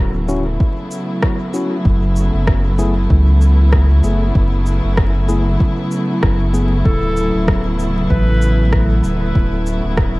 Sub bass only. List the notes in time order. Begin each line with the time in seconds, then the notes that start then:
Already playing: D1
1.85 F#1
2.34 F#1
3.10 C#2
4.04 F#1
4.35 F#1
4.84 F#1
6.23 F#1
6.85 D1
7.34 D1
8.10 A1
9.03 D1
9.35 D1
9.84 D1